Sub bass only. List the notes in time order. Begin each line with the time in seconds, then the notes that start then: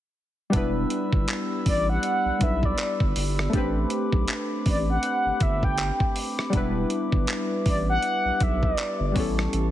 0.54 E1
1.13 G1
1.66 A1
2.25 B1
2.41 B1
3.00 G1
3.16 G1
3.54 A1
4.13 B1
4.66 A1
5.25 G1
5.41 G1
6.53 E1
7.12 G1
7.66 A1
8.25 B1
8.41 B1
9.00 G1
9.16 A1
9.53 A1